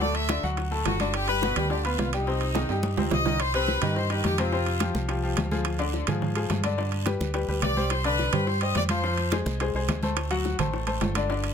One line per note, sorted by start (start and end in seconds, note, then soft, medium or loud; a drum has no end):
0.00 0.38 D2 medium
0.00 0.24 A2 medium
0.00 0.24 A3 medium
0.00 0.25 A4 medium
0.00 0.14 D5 loud
0.00 high bongo medium
0.00 high conga soft
0.00 long guiro medium
0.15 0.44 E5 loud
0.15 high bongo soft
0.15 high conga soft
0.15 high timbale medium
0.29 0.41 D3 medium
0.29 0.41 D4 medium
0.29 0.41 D5 medium
0.29 high bongo medium
0.29 high conga loud
0.29 high timbale medium
0.29 low timbale medium
0.29 short guiro medium
0.43 0.83 D2 medium
0.43 0.66 F#3 medium
0.43 0.67 F#4 medium
0.43 0.67 F#5 medium
0.43 high conga soft
0.43 short guiro medium
0.57 high bongo medium
0.57 high conga soft
0.57 high timbale medium
0.57 long guiro medium
0.71 0.95 A2 medium
0.71 0.95 A3 medium
0.71 0.95 A4 medium
0.71 high bongo soft
0.71 high conga soft
0.86 1.51 G1 medium
0.86 1.13 F#4 medium
0.86 high bongo soft
0.86 low bongo medium
0.86 high conga soft
0.86 high timbale medium
0.86 low timbale medium
0.86 short guiro medium
1.00 1.23 D3 medium
1.00 1.23 D4 medium
1.00 1.24 D5 medium
1.00 high bongo soft
1.00 high conga medium
1.00 high timbale medium
1.00 short guiro medium
1.14 1.29 G4 loud
1.14 high bongo medium
1.14 high conga soft
1.14 high timbale medium
1.14 long guiro medium
1.28 1.40 G3 medium
1.28 1.40 G4 medium
1.28 1.67 B4 loud
1.28 1.40 G5 medium
1.28 high bongo soft
1.28 high conga soft
1.28 high timbale medium
1.42 1.54 B2 medium
1.42 1.54 B3 medium
1.42 1.54 B4 medium
1.42 high bongo medium
1.42 high conga loud
1.42 low timbale medium
1.42 short guiro medium
1.56 1.96 D2 medium
1.56 1.68 G3 medium
1.56 1.68 G4 medium
1.56 1.69 G5 medium
1.56 high conga soft
1.56 low conga medium
1.56 high timbale loud
1.56 short guiro medium
1.70 1.82 D3 medium
1.70 1.82 D4 medium
1.70 1.85 G4 medium
1.70 1.83 D5 medium
1.70 high bongo medium
1.70 high conga soft
1.70 long guiro medium
1.84 2.08 B3 medium
1.84 2.13 F4 medium
1.84 2.08 B4 medium
1.84 2.08 B5 medium
1.84 high bongo soft
1.84 high conga soft
1.84 high timbale medium
1.98 2.64 C2 medium
1.98 high bongo soft
1.98 low bongo medium
1.98 high conga medium
1.98 high timbale medium
1.98 low timbale medium
1.98 short guiro medium
2.12 2.25 G3 medium
2.12 3.07 D#4 medium
2.12 2.25 G4 medium
2.12 2.25 G5 medium
2.12 high bongo soft
2.12 high conga soft
2.12 high timbale medium
2.12 short guiro medium
2.27 2.50 C3 medium
2.27 2.50 C4 medium
2.27 2.51 C5 medium
2.27 high bongo medium
2.27 high conga soft
2.27 long guiro medium
2.41 high bongo soft
2.41 high conga soft
2.41 high timbale medium
2.55 2.67 D#3 medium
2.55 2.67 D#4 medium
2.55 2.68 D#5 medium
2.55 high bongo medium
2.55 high conga medium
2.55 high timbale loud
2.55 short guiro medium
2.69 2.95 G2 medium
2.69 2.93 G3 medium
2.69 2.93 G4 medium
2.69 2.93 G5 medium
2.69 high conga soft
2.69 high timbale medium
2.69 short guiro medium
2.83 high bongo medium
2.83 high conga medium
2.83 long guiro medium
2.97 3.10 D2 medium
2.97 3.21 C3 medium
2.97 3.21 C4 medium
2.97 3.21 C5 medium
2.97 high bongo soft
2.97 high conga medium
2.97 low timbale medium
3.11 3.77 C2 medium
3.11 3.38 D#5 loud
3.11 high bongo soft
3.11 low bongo medium
3.11 low conga medium
3.11 low timbale medium
3.11 short guiro medium
3.25 3.38 D#3 medium
3.25 3.38 D#4 medium
3.25 3.38 D#5 medium
3.25 high bongo soft
3.25 low conga medium
3.25 low timbale medium
3.25 short guiro medium
3.40 3.54 C5 loud
3.40 high bongo medium
3.40 high conga soft
3.40 high timbale loud
3.40 long guiro medium
3.54 3.77 C3 medium
3.54 3.77 C4 medium
3.54 3.93 B4 loud
3.54 3.78 C5 medium
3.54 high conga soft
3.54 high timbale medium
3.68 high bongo medium
3.68 high conga medium
3.68 short guiro medium
3.82 4.21 G2 medium
3.82 4.05 D#3 medium
3.82 4.05 D#4 medium
3.82 4.05 G4 medium
3.82 high conga soft
3.82 low conga medium
3.82 high timbale medium
3.82 short guiro medium
3.96 4.11 C5 medium
3.96 high bongo medium
3.96 high conga soft
3.96 long guiro medium
4.10 4.33 D#3 medium
4.10 4.33 D#4 medium
4.10 4.34 G4 medium
4.10 4.25 B4 medium
4.10 high conga soft
4.10 high timbale medium
4.24 4.89 F2 medium
4.24 4.38 G4 medium
4.24 high bongo medium
4.24 low bongo medium
4.24 high conga medium
4.24 high timbale medium
4.24 short guiro medium
4.38 4.50 C3 medium
4.38 4.50 C4 medium
4.38 4.96 F4 medium
4.38 4.50 C5 medium
4.38 high conga medium
4.38 high timbale medium
4.38 short guiro medium
4.52 4.76 C3 medium
4.52 4.76 C4 medium
4.52 4.76 C5 medium
4.52 high bongo medium
4.52 long guiro medium
4.66 high bongo soft
4.66 high conga soft
4.66 high timbale medium
4.80 5.04 F3 medium
4.80 5.04 F4 medium
4.80 5.04 G4 medium
4.80 high bongo medium
4.80 high conga loud
4.80 high timbale medium
4.80 short guiro medium
4.94 5.34 C2 medium
4.94 high bongo soft
4.94 high conga medium
4.94 short guiro medium
5.09 5.21 F3 medium
5.09 5.21 F4 medium
5.09 5.21 G4 medium
5.09 high bongo medium
5.09 high conga soft
5.09 high timbale medium
5.09 long guiro medium
5.23 5.46 F3 medium
5.23 5.46 F4 medium
5.23 5.47 G4 medium
5.23 high bongo soft
5.23 high conga soft
5.37 6.02 D2 medium
5.37 high bongo medium
5.37 low bongo medium
5.37 high conga medium
5.37 high timbale medium
5.37 short guiro medium
5.51 5.74 F3 medium
5.51 5.75 F4 medium
5.51 5.75 G#4 medium
5.51 high conga medium
5.51 short guiro medium
5.65 high bongo medium
5.65 high timbale loud
5.65 long guiro medium
5.79 6.02 D3 medium
5.79 6.03 D4 medium
5.79 6.03 D5 medium
5.79 high conga soft
5.79 high timbale medium
5.94 high bongo medium
5.94 high conga medium
5.94 short guiro medium
6.07 6.47 G#2 medium
6.07 6.31 F3 medium
6.07 6.31 F4 medium
6.07 6.31 G#4 medium
6.07 high conga soft
6.07 low conga medium
6.07 high timbale loud
6.07 short guiro medium
6.22 high bongo medium
6.22 high conga soft
6.22 low conga medium
6.22 long guiro medium
6.35 6.59 F3 medium
6.35 6.59 F4 medium
6.35 6.59 G#4 medium
6.35 high conga soft
6.35 high timbale medium
6.50 7.15 G2 medium
6.50 high bongo medium
6.50 low bongo medium
6.50 high conga medium
6.50 high timbale medium
6.50 short guiro medium
6.64 6.76 D3 medium
6.64 6.76 D4 medium
6.64 6.76 D5 medium
6.64 high conga medium
6.64 high timbale loud
6.64 short guiro medium
6.78 7.01 D3 medium
6.78 7.01 D4 medium
6.78 7.01 D5 medium
6.78 high bongo medium
6.78 high conga soft
6.78 long guiro medium
6.92 high bongo soft
6.92 high conga soft
6.92 high timbale medium
7.05 7.29 G3 medium
7.05 7.29 G4 medium
7.05 7.29 B4 medium
7.05 high bongo medium
7.05 high conga loud
7.05 high timbale medium
7.05 short guiro medium
7.20 7.46 D2 medium
7.20 high bongo soft
7.20 high conga medium
7.20 short guiro medium
7.34 7.46 G3 medium
7.34 7.46 G4 medium
7.34 7.46 B4 medium
7.34 high bongo medium
7.34 high conga soft
7.34 high timbale medium
7.34 long guiro medium
7.48 7.61 D2 medium
7.48 7.72 G3 medium
7.48 7.72 G4 medium
7.48 7.72 B4 medium
7.48 high bongo soft
7.48 high conga soft
7.62 8.28 C2 medium
7.62 7.89 D5 loud
7.62 high bongo medium
7.62 low bongo medium
7.62 high conga medium
7.62 high timbale medium
7.62 short guiro medium
7.76 8.00 G3 medium
7.76 8.00 G4 medium
7.76 8.00 C5 medium
7.76 high conga medium
7.76 short guiro medium
7.90 8.05 C5 medium
7.90 high bongo medium
7.90 high conga soft
7.90 high timbale medium
7.90 long guiro medium
8.04 8.28 D3 medium
8.04 8.28 D4 medium
8.04 8.45 B4 loud
8.04 8.28 D5 medium
8.04 high conga soft
8.04 high timbale medium
8.19 high bongo medium
8.19 high conga medium
8.19 short guiro medium
8.32 8.72 G2 medium
8.32 8.56 G3 medium
8.32 8.56 G4 medium
8.32 8.56 C5 medium
8.32 high conga soft
8.32 low conga medium
8.32 high timbale loud
8.32 short guiro medium
8.47 8.62 C5 medium
8.47 high bongo medium
8.47 high conga soft
8.47 long guiro medium
8.61 8.85 G3 medium
8.61 8.85 G4 medium
8.61 8.85 C5 medium
8.61 8.76 D#5 medium
8.61 high conga soft
8.61 high timbale medium
8.75 9.40 F2 medium
8.75 8.82 D5 loud
8.75 high bongo medium
8.75 low bongo medium
8.75 high conga medium
8.75 high timbale medium
8.75 short guiro medium
8.89 9.02 F3 medium
8.89 9.02 F4 medium
8.89 9.43 C5 medium
8.89 9.02 F5 medium
8.89 high conga medium
8.89 high timbale loud
8.89 short guiro medium
9.03 9.27 F3 medium
9.03 9.27 F4 medium
9.03 9.27 F5 medium
9.03 high bongo medium
9.03 high conga soft
9.03 long guiro medium
9.18 high bongo soft
9.18 high conga soft
9.18 high timbale medium
9.32 9.55 G#3 medium
9.32 9.55 G#4 medium
9.32 9.56 C5 medium
9.32 high bongo medium
9.32 high conga loud
9.32 high timbale medium
9.32 short guiro medium
9.45 9.72 C2 medium
9.45 high bongo soft
9.45 high conga loud
9.45 short guiro medium
9.60 9.72 G#3 medium
9.60 9.72 G#4 medium
9.60 9.73 C5 medium
9.60 high bongo medium
9.60 high conga soft
9.60 high timbale medium
9.60 long guiro medium
9.74 9.87 C2 medium
9.74 9.98 G#3 medium
9.74 9.98 G#4 medium
9.74 9.98 C5 medium
9.74 high bongo soft
9.74 high conga soft
9.88 10.53 D2 medium
9.88 high bongo medium
9.88 low bongo medium
9.88 high conga medium
9.88 high timbale medium
9.88 short guiro medium
10.03 10.26 A3 medium
10.03 10.26 A4 medium
10.03 10.26 C5 medium
10.03 high conga medium
10.03 short guiro medium
10.17 high bongo medium
10.17 high timbale loud
10.17 long guiro medium
10.30 10.54 F#3 medium
10.30 10.54 F#4 medium
10.30 10.54 F#5 medium
10.30 high conga soft
10.30 high timbale medium
10.45 high bongo medium
10.45 high conga medium
10.45 short guiro medium
10.59 10.98 A1 medium
10.59 10.82 A3 medium
10.59 10.82 A4 medium
10.59 10.82 C5 medium
10.59 high conga soft
10.59 low conga medium
10.59 high timbale medium
10.59 short guiro medium
10.73 high bongo medium
10.73 high conga soft
10.73 long guiro medium
10.87 11.10 A3 medium
10.87 11.10 A4 medium
10.87 11.10 C5 medium
10.87 high conga soft
10.87 high timbale medium
11.01 11.54 G1 loud
11.01 high bongo medium
11.01 low bongo medium
11.01 high conga medium
11.01 high timbale medium
11.01 low timbale medium
11.01 short guiro medium
11.15 11.27 D3 medium
11.15 11.27 D4 medium
11.15 11.27 D5 medium
11.15 high conga medium
11.15 high timbale loud
11.15 short guiro medium
11.29 11.53 D3 medium
11.29 11.53 D4 medium
11.29 11.53 D5 medium
11.29 high bongo medium
11.29 high conga soft
11.29 long guiro medium
11.44 high bongo soft
11.44 high conga soft
11.44 high timbale medium